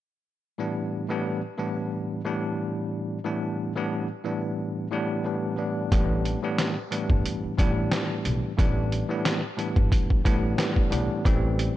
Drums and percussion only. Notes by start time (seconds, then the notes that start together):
5.92 kick, closed hi-hat
6.25 closed hi-hat
6.58 snare, closed hi-hat
6.92 closed hi-hat
7.10 kick
7.26 closed hi-hat
7.59 kick, closed hi-hat
7.92 snare, closed hi-hat
8.25 closed hi-hat
8.59 kick, closed hi-hat
8.92 closed hi-hat
9.25 snare, closed hi-hat
9.59 closed hi-hat
9.76 kick
9.92 kick, closed hi-hat
10.10 kick
10.25 kick, closed hi-hat
10.58 snare, closed hi-hat
10.76 kick
10.92 closed hi-hat
11.25 kick, closed hi-hat
11.59 closed hi-hat